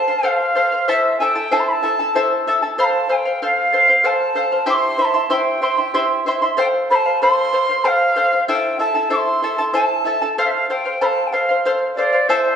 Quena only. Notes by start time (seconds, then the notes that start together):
Already playing: A5
0.27 F5
0.88 E5
1.18 G#5
1.23 G5
1.52 A5
1.60 C6
1.68 B5
1.72 A5
2.79 B5
2.84 A5
3.11 G5 G#5
3.43 F5
4.05 A5
4.69 D6
4.73 C6
5.00 B5
5.04 A5
5.32 G5
6.58 G5
6.90 B5
6.95 A5
7.21 C6
7.84 F5 G5
8.47 G5
8.79 A5
9.12 C6 D6
9.74 A5
10.38 F5
10.46 E5
10.50 F5
10.70 G5
11.01 B5
11.05 A5
11.27 G5
11.32 F5
11.95 D5
12.28 C5